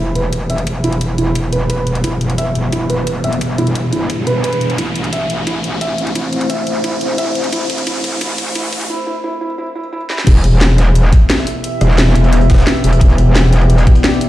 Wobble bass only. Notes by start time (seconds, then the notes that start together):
Already playing: E1
0.67 E1
2.04 E1
3.41 E1
3.92 E1
4.27 E1
4.78 A1
6.15 A1
7.53 A1
10.27 E1
11.81 E1
12.15 E1
12.84 E1
13.01 E1